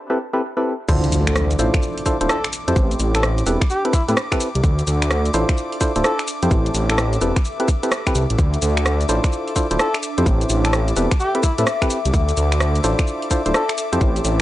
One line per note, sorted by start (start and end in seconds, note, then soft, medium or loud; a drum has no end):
0.10 0.18 C4 loud
0.10 0.18 E4 medium
0.10 0.18 G4 medium
0.10 0.18 A4 medium
0.10 0.18 B4 loud
0.33 0.42 C4 medium
0.33 0.42 E4 medium
0.33 0.42 G4 medium
0.33 0.42 A4 medium
0.33 0.42 B4 loud
0.57 0.74 C4 medium
0.57 0.74 E4 medium
0.57 0.74 G4 medium
0.57 0.74 A4 medium
0.57 0.74 B4 loud
0.89 1.07 D2 loud
0.89 1.56 D4 loud
0.89 3.53 D4 medium
0.89 1.56 E4 loud
0.89 1.56 F4 medium
0.89 1.56 A4 medium
0.89 1.56 C5 loud
0.89 8.37 D6 medium
0.89 kick loud
0.89 crash loud
0.89 impact medium
0.89 shaker soft
1.04 closed hi-hat soft
1.04 shaker soft
1.12 1.55 D2 loud
1.12 open hi-hat loud
1.12 shaker medium
1.27 finger snap medium
1.27 closed hi-hat medium
1.27 shaker soft
1.36 cross-stick loud
1.36 shaker soft
1.51 closed hi-hat soft
1.51 shaker soft
1.59 1.70 A1 loud
1.59 2.04 D4 medium
1.59 2.04 E4 medium
1.59 2.04 F4 medium
1.59 2.04 A4 medium
1.59 2.04 C5 loud
1.59 open hi-hat loud
1.59 shaker medium
1.74 finger snap medium
1.74 kick loud
1.74 closed hi-hat medium
1.74 shaker soft
1.82 shaker soft
1.98 open hi-hat medium
2.06 2.17 D4 loud
2.06 2.17 E4 loud
2.06 2.17 F4 loud
2.06 2.17 A4 loud
2.06 2.17 C5 loud
2.06 kick medium
2.06 open hi-hat loud
2.06 shaker medium
2.21 2.27 D1 medium
2.21 2.38 D4 medium
2.21 2.38 E4 medium
2.21 2.38 F4 medium
2.21 2.38 A4 medium
2.21 2.38 C5 loud
2.21 closed hi-hat medium
2.21 shaker soft
2.29 2.46 A4 medium
2.29 cross-stick loud
2.29 shaker soft
2.44 finger snap medium
2.44 closed hi-hat medium
2.44 shaker soft
2.53 open hi-hat loud
2.53 shaker medium
2.68 2.74 F2 medium
2.68 3.44 C4 medium
2.68 3.44 E4 medium
2.68 3.44 G4 medium
2.68 3.44 A4 medium
2.68 3.44 C5 loud
2.68 closed hi-hat medium
2.68 shaker soft
2.76 2.95 A1 loud
2.76 14.42 A4 medium
2.76 kick loud
2.76 shaker soft
2.91 closed hi-hat soft
2.91 shaker soft
3.00 3.43 A1 loud
3.00 open hi-hat loud
3.00 shaker medium
3.15 3.25 A4 medium
3.15 finger snap medium
3.15 closed hi-hat medium
3.15 shaker soft
3.23 cross-stick loud
3.23 shaker soft
3.38 closed hi-hat soft
3.38 shaker soft
3.46 3.57 E1 loud
3.46 3.61 C4 medium
3.46 3.61 E4 medium
3.46 3.61 G4 medium
3.46 3.61 A4 medium
3.46 3.61 B4 medium
3.46 open hi-hat loud
3.46 shaker medium
3.61 finger snap medium
3.61 kick loud
3.61 closed hi-hat medium
3.61 shaker soft
3.70 3.86 G4 medium
3.70 shaker soft
3.85 3.93 C4 medium
3.85 3.93 E4 medium
3.85 3.93 G4 medium
3.85 3.93 A4 medium
3.85 3.93 B4 loud
3.85 closed hi-hat medium
3.93 4.03 E4 medium
3.93 kick loud
3.93 open hi-hat loud
3.93 shaker medium
4.08 4.14 A2 medium
4.08 4.17 C4 medium
4.08 4.17 E4 medium
4.08 4.14 E4 medium
4.08 4.17 G4 medium
4.08 4.17 A4 medium
4.08 4.17 B4 loud
4.08 closed hi-hat medium
4.08 shaker soft
4.17 cross-stick loud
4.17 shaker soft
4.32 4.49 C4 medium
4.32 4.49 E4 medium
4.32 4.49 G4 medium
4.32 4.49 A4 medium
4.32 4.49 B4 loud
4.32 finger snap medium
4.32 kick medium
4.32 closed hi-hat medium
4.32 shaker soft
4.40 open hi-hat loud
4.40 shaker medium
4.55 4.61 C2 medium
4.55 closed hi-hat medium
4.55 shaker soft
4.63 4.82 D2 loud
4.63 7.17 D4 medium
4.63 kick loud
4.63 shaker soft
4.79 closed hi-hat soft
4.79 shaker soft
4.87 5.30 D2 loud
4.87 open hi-hat loud
4.87 shaker medium
5.02 finger snap medium
5.02 closed hi-hat medium
5.02 shaker soft
5.11 cross-stick loud
5.11 shaker soft
5.22 14.42 E5 medium
5.22 closed hi-hat soft
5.22 shaker soft
5.34 5.45 A1 loud
5.34 5.79 D4 medium
5.34 5.79 E4 medium
5.34 5.79 F4 medium
5.34 5.79 A4 medium
5.34 5.79 C5 loud
5.34 open hi-hat loud
5.34 shaker medium
5.49 finger snap medium
5.49 kick loud
5.49 closed hi-hat medium
5.49 shaker soft
5.57 shaker soft
5.72 open hi-hat medium
5.81 5.92 D4 loud
5.81 5.92 E4 loud
5.81 5.92 F4 medium
5.81 5.92 A4 loud
5.81 5.92 C5 loud
5.81 kick medium
5.81 open hi-hat loud
5.81 shaker medium
5.96 6.02 D1 medium
5.96 6.13 D4 loud
5.96 6.13 E4 medium
5.96 6.13 F4 medium
5.96 6.13 A4 medium
5.96 6.13 C5 loud
5.96 closed hi-hat medium
5.96 shaker soft
6.04 6.21 A4 medium
6.04 cross-stick loud
6.04 shaker soft
6.19 finger snap medium
6.19 closed hi-hat medium
6.19 shaker soft
6.28 open hi-hat loud
6.28 shaker medium
6.43 6.49 F2 medium
6.43 7.19 C4 medium
6.43 7.19 E4 medium
6.43 7.19 G4 medium
6.43 7.19 A4 medium
6.43 7.19 C5 loud
6.43 closed hi-hat medium
6.43 shaker soft
6.51 6.70 A1 loud
6.51 kick loud
6.51 shaker soft
6.66 closed hi-hat soft
6.66 shaker soft
6.75 7.18 A1 loud
6.75 open hi-hat loud
6.75 shaker medium
6.80 8.39 B5 medium
6.90 7.00 A4 medium
6.90 finger snap medium
6.90 closed hi-hat medium
6.90 shaker soft
6.98 cross-stick loud
6.98 shaker soft
7.13 closed hi-hat soft
7.13 shaker soft
7.21 7.32 E1 loud
7.21 7.36 C4 medium
7.21 7.36 E4 medium
7.21 7.36 G4 medium
7.21 7.36 A4 medium
7.21 7.36 B4 medium
7.21 open hi-hat loud
7.21 shaker medium
7.36 finger snap soft
7.36 kick loud
7.36 closed hi-hat medium
7.36 shaker soft
7.45 shaker soft
7.60 7.68 C4 loud
7.60 7.68 E4 medium
7.60 7.68 G4 medium
7.60 7.68 A4 medium
7.60 7.68 B4 loud
7.60 closed hi-hat medium
7.68 kick loud
7.68 open hi-hat loud
7.68 shaker medium
7.83 7.92 C4 medium
7.83 7.92 E4 medium
7.83 7.92 G4 medium
7.83 7.91 A4 medium
7.83 7.92 B4 loud
7.83 closed hi-hat medium
7.83 shaker soft
7.92 cross-stick loud
7.92 shaker soft
8.07 8.24 C4 medium
8.07 8.24 E4 medium
8.07 8.24 G4 medium
8.07 8.24 A4 medium
8.07 8.24 B4 loud
8.07 finger snap medium
8.07 kick medium
8.07 closed hi-hat medium
8.07 shaker soft
8.15 8.26 C2 loud
8.15 open hi-hat loud
8.15 shaker medium
8.30 8.36 A1 medium
8.30 closed hi-hat medium
8.30 shaker soft
8.38 8.57 D2 loud
8.38 11.02 D4 medium
8.38 14.42 D6 medium
8.38 kick loud
8.38 shaker soft
8.54 closed hi-hat soft
8.54 shaker soft
8.62 9.05 D2 loud
8.62 open hi-hat loud
8.62 shaker medium
8.77 finger snap medium
8.77 closed hi-hat medium
8.77 shaker soft
8.86 cross-stick loud
8.86 shaker soft
9.01 closed hi-hat soft
9.01 shaker soft
9.09 9.20 A1 loud
9.09 9.54 D4 medium
9.09 9.54 E4 medium
9.09 9.54 F4 medium
9.09 9.54 A4 medium
9.09 9.54 C5 loud
9.09 open hi-hat loud
9.09 shaker medium
9.24 finger snap soft
9.24 kick loud
9.24 closed hi-hat medium
9.24 shaker soft
9.32 shaker soft
9.48 open hi-hat medium
9.56 9.67 D4 loud
9.56 9.67 E4 loud
9.56 9.67 F4 loud
9.56 9.67 A4 medium
9.56 9.67 C5 loud
9.56 kick medium
9.56 open hi-hat loud
9.56 shaker medium
9.71 9.77 D1 medium
9.71 9.88 D4 loud
9.71 9.88 E4 medium
9.71 9.88 F4 medium
9.71 9.88 A4 medium
9.71 9.88 C5 loud
9.71 closed hi-hat medium
9.71 shaker soft
9.79 9.96 A4 medium
9.79 cross-stick loud
9.79 shaker soft
9.94 finger snap medium
9.94 closed hi-hat medium
9.94 shaker soft
10.03 open hi-hat loud
10.03 shaker medium
10.18 10.24 F2 medium
10.18 10.94 C4 medium
10.18 10.94 E4 medium
10.18 10.94 G4 medium
10.18 10.94 A4 medium
10.18 10.94 C5 loud
10.18 closed hi-hat medium
10.18 shaker soft
10.26 10.45 A1 loud
10.26 kick loud
10.26 shaker soft
10.41 closed hi-hat soft
10.41 shaker soft
10.50 10.93 A1 loud
10.50 open hi-hat loud
10.50 shaker medium
10.65 10.75 A4 medium
10.65 12.14 B5 medium
10.65 finger snap medium
10.65 closed hi-hat medium
10.65 shaker soft
10.73 cross-stick loud
10.73 shaker soft
10.88 closed hi-hat soft
10.88 shaker soft
10.96 11.07 E1 loud
10.96 11.11 C4 medium
10.96 11.11 E4 medium
10.96 11.11 G4 medium
10.96 11.11 A4 medium
10.96 11.11 B4 medium
10.96 open hi-hat loud
10.96 shaker medium
11.11 finger snap soft
11.11 kick loud
11.11 closed hi-hat medium
11.11 shaker soft
11.20 11.36 G4 loud
11.20 shaker soft
11.35 11.43 C4 medium
11.35 11.43 E4 medium
11.35 11.43 G4 medium
11.35 11.43 A4 medium
11.35 11.43 B4 loud
11.35 closed hi-hat medium
11.43 11.53 E4 medium
11.43 kick loud
11.43 open hi-hat loud
11.43 shaker medium
11.58 11.64 A2 medium
11.58 11.67 C4 medium
11.58 11.67 E4 medium
11.58 11.64 E4 medium
11.58 11.67 G4 medium
11.58 11.67 A4 medium
11.58 11.67 B4 loud
11.58 closed hi-hat medium
11.58 shaker soft
11.67 cross-stick loud
11.67 shaker soft
11.82 11.99 C4 medium
11.82 11.99 E4 medium
11.82 11.99 G4 medium
11.82 11.99 A4 medium
11.82 11.99 B4 loud
11.82 finger snap medium
11.82 kick medium
11.82 closed hi-hat medium
11.82 shaker soft
11.90 open hi-hat loud
11.90 shaker medium
12.05 12.11 C2 medium
12.05 closed hi-hat medium
12.05 shaker soft
12.14 12.32 D2 loud
12.14 14.42 D4 medium
12.14 kick loud
12.14 shaker soft
12.29 closed hi-hat soft
12.29 shaker soft
12.37 12.80 D2 loud
12.37 open hi-hat loud
12.37 shaker medium
12.52 finger snap medium
12.52 closed hi-hat medium
12.52 shaker soft
12.60 cross-stick loud
12.60 shaker soft
12.75 closed hi-hat soft
12.75 shaker soft
12.84 12.95 A1 loud
12.84 13.29 D4 medium
12.84 13.29 E4 medium
12.84 13.29 F4 medium
12.84 13.29 A4 medium
12.84 13.29 C5 loud
12.84 open hi-hat loud
12.84 shaker medium
12.99 finger snap medium
12.99 kick loud
12.99 closed hi-hat medium
12.99 shaker soft
13.07 shaker soft
13.22 open hi-hat medium
13.31 13.42 D4 loud
13.31 13.42 E4 medium
13.31 13.42 F4 medium
13.31 13.42 A4 medium
13.31 13.42 C5 loud
13.31 kick medium
13.31 open hi-hat loud
13.31 shaker medium
13.46 13.52 D1 medium
13.46 13.63 D4 medium
13.46 13.63 E4 medium
13.46 13.63 F4 medium
13.46 13.63 A4 medium
13.46 13.63 C5 loud
13.46 closed hi-hat medium
13.46 shaker soft
13.54 13.71 A4 loud
13.54 cross-stick loud
13.54 shaker soft
13.69 finger snap medium
13.69 closed hi-hat medium
13.69 shaker soft
13.78 open hi-hat loud
13.78 shaker medium
13.92 13.99 F2 medium
13.92 14.42 C4 medium
13.92 14.42 E4 medium
13.92 14.42 G4 medium
13.92 14.42 A4 medium
13.92 14.42 C5 loud
13.92 closed hi-hat medium
13.92 shaker soft
14.01 14.20 A1 loud
14.01 kick loud
14.01 shaker soft
14.16 closed hi-hat soft
14.16 shaker soft
14.25 14.42 A1 loud
14.25 open hi-hat loud
14.25 shaker medium